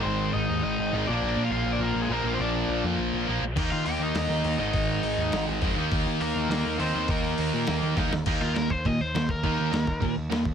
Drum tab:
CC |--------|--------|--------|x-------|
HH |--------|--------|--------|--o-o-o-|
SD |--------|--------|--------|----o---|
BD |--------|--------|--------|o-------|

CC |--------|--------|--------|x-x-x-x-|
HH |o-o-o-o-|o-o-o-o-|o-o-o-o-|--------|
SD |----o---|----o---|----o-oo|--o---o-|
BD |o-----o-|o-------|o-----o-|o--oo--o|

CC |x-x-x-x-|
HH |--------|
SD |--o---o-|
BD |o--oo--o|